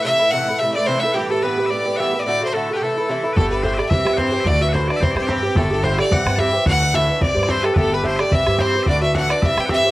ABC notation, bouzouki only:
X:1
M:4/4
L:1/8
Q:"Swing" 1/4=218
K:Ador
V:1 name="Bouzouki"
[C,E,A,E] [E,A,E] [C,E,A,E] [E,A,E] [C,E,A,E] [E,A,E] [C,E,A,E] [E,A,E] | [G,,E,B,G] [E,B,G] [G,,E,B,G] [E,B,G] [G,,E,B,G] [E,B,G] [G,,E,B,G] [E,B,G] | [A,,D,A,F] [D,A,F] [A,,D,A,F] [D,A,F] [C,E,A,E] [E,A,E] [C,E,A,E] [E,A,E] | [A,,D,A,G] [D,A,G] [A,,D,A,G] [D,A,G] [G,,E,CG] [E,CG] [G,,E,CG] [E,CG] |
[A,,E,DF] [E,DF] [A,,E,DF] [E,DF] [G,,E,CG] [E,CG] [G,,E,CG] [E,CG] | [A,,D,A,G] [D,A,G] [A,,D,A,G] [D,A,G] [G,,E,CG] [E,CG] [G,,E,CG] [E,CG] | [A,,E,DF] [E,DF] [A,,E,DF] [E,DF] [G,,E,CG] [E,CG] [G,,E,CG] [E,CG] | [A,,D,A,G] [D,A,G] [A,,D,A,G] [D,A,G] [G,,E,CG] [E,CG] [G,,E,CG] [E,CG] |
[A,,E,DF] [E,DF] [A,,E,DF] [E,DF] [G,,E,CG] [E,CG] [G,,E,CG] [E,CG] |]